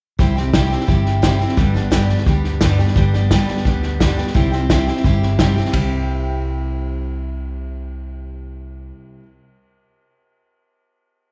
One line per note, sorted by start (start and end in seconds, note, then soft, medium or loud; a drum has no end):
0.19 0.75 C2 medium
0.19 0.36 C3 medium
0.19 0.36 G3 medium
0.19 0.37 C4 medium
0.19 0.35 E4 medium
0.19 0.34 G4 medium
0.19 kick medium
0.19 snare soft
0.35 0.53 C4 soft
0.35 0.53 E4 soft
0.35 0.53 G4 soft
0.35 snare soft
0.53 0.71 C3 medium
0.53 0.71 G3 medium
0.53 0.71 C4 medium
0.53 0.70 E4 medium
0.53 0.68 G4 medium
0.53 kick medium
0.53 snare medium
0.53 hi-hat pedal medium
0.70 0.86 C4 soft
0.70 0.87 E4 soft
0.70 0.87 G4 medium
0.70 snare soft
0.80 snare soft
0.87 1.44 G1 medium
0.87 1.22 G3 medium
0.87 1.21 C4 medium
0.87 1.22 E4 medium
0.87 1.24 G4 medium
0.87 kick medium
0.87 snare soft
1.06 snare soft
1.22 1.40 C3 medium
1.22 1.40 G3 medium
1.22 1.40 C4 medium
1.22 1.39 E4 medium
1.22 1.38 G4 medium
1.22 kick medium
1.22 snare medium
1.22 hi-hat pedal medium
1.39 1.58 C4 soft
1.39 1.57 E4 soft
1.39 1.57 G4 medium
1.39 snare soft
1.49 snare soft
1.57 2.13 G1 medium
1.57 1.74 G2 medium
1.57 1.75 D3 medium
1.57 1.75 G3 medium
1.57 1.74 B3 medium
1.57 1.74 D4 medium
1.57 1.73 G4 medium
1.57 kick loud
1.57 snare soft
1.74 1.90 G3 soft
1.74 1.90 B3 soft
1.74 1.91 D4 medium
1.74 1.91 G4 soft
1.74 snare soft
1.91 2.09 G2 medium
1.91 2.09 D3 medium
1.91 2.09 G3 medium
1.91 2.09 B3 medium
1.91 2.09 D4 medium
1.91 2.08 G4 medium
1.91 kick medium
1.91 snare medium
1.91 hi-hat pedal medium
2.09 2.26 G3 soft
2.09 2.26 B3 soft
2.09 2.27 D4 medium
2.09 2.27 G4 soft
2.09 snare soft
2.18 snare soft
2.26 2.82 D2 medium
2.26 2.62 G3 medium
2.26 2.62 B3 medium
2.26 2.62 D4 medium
2.26 2.63 G4 medium
2.26 kick loud
2.26 snare soft
2.44 snare soft
2.61 2.79 G2 medium
2.61 2.79 D3 medium
2.61 2.79 G3 medium
2.61 2.79 B3 medium
2.61 2.79 D4 medium
2.61 2.78 G4 medium
2.61 kick medium
2.61 snare medium
2.61 hi-hat pedal medium
2.79 2.96 G3 soft
2.79 2.96 B3 soft
2.79 2.96 D4 soft
2.79 2.96 G4 soft
2.79 snare soft
2.87 snare soft
2.96 3.51 G1 medium
2.96 3.13 G2 medium
2.96 3.14 D3 medium
2.96 3.14 G3 medium
2.96 3.14 B3 medium
2.96 3.14 D4 medium
2.96 3.13 G4 medium
2.96 kick loud
2.96 snare soft
3.14 3.30 G3 soft
3.14 3.31 B3 soft
3.14 3.31 D4 medium
3.14 3.31 G4 medium
3.14 snare soft
3.31 3.48 G2 medium
3.31 3.48 D3 medium
3.31 3.48 G3 medium
3.31 3.49 B3 medium
3.31 3.48 D4 medium
3.31 3.48 G4 medium
3.31 kick medium
3.31 snare medium
3.31 hi-hat pedal medium
3.48 3.66 G3 soft
3.48 3.66 B3 soft
3.48 3.66 D4 medium
3.48 3.66 G4 soft
3.48 snare soft
3.57 snare soft
3.65 4.21 D2 medium
3.65 4.01 G3 medium
3.65 4.00 B3 medium
3.65 4.00 D4 medium
3.65 kick loud
3.65 snare soft
3.69 4.02 G4 medium
3.83 snare soft
4.00 4.17 G2 medium
4.00 4.18 D3 medium
4.00 4.18 G3 medium
4.00 4.18 B3 medium
4.00 4.17 D4 medium
4.00 4.16 G4 medium
4.00 kick medium
4.00 snare medium
4.00 hi-hat pedal medium
4.17 4.33 G3 soft
4.17 4.34 B3 soft
4.17 4.35 D4 soft
4.17 4.34 G4 soft
4.17 snare soft
4.27 snare soft
4.34 4.90 C2 medium
4.34 4.52 C3 medium
4.34 4.52 G3 medium
4.34 4.52 C4 medium
4.34 4.51 E4 medium
4.34 4.50 G4 medium
4.34 kick medium
4.34 snare soft
4.52 4.69 C4 soft
4.52 4.70 E4 soft
4.52 4.69 G4 soft
4.52 snare soft
4.70 4.87 C3 medium
4.70 4.87 G3 medium
4.70 4.87 C4 medium
4.70 4.87 E4 medium
4.70 4.86 G4 medium
4.70 kick medium
4.70 snare loud
4.70 hi-hat pedal medium
4.87 5.04 C4 soft
4.87 5.05 E4 soft
4.87 5.04 G4 medium
4.87 snare soft
4.96 snare soft
5.04 5.60 G1 medium
5.04 5.38 G3 medium
5.04 5.39 C4 medium
5.04 5.39 E4 medium
5.04 5.39 G4 medium
5.04 kick medium
5.04 snare soft
5.23 snare soft
5.39 5.56 C3 medium
5.39 5.56 G3 medium
5.39 5.56 C4 medium
5.39 5.55 E4 medium
5.39 5.55 G4 medium
5.39 kick medium
5.39 snare medium
5.39 hi-hat pedal medium
5.56 5.74 C4 soft
5.56 5.73 E4 soft
5.56 5.73 G4 medium
5.56 snare soft
5.65 snare soft
5.70 8.91 C2 medium
5.70 9.20 C3 medium
5.70 9.23 G3 medium
5.70 kick medium
5.70 ride medium
5.76 9.26 C4 medium
5.76 9.28 E4 medium
5.81 9.31 G4 medium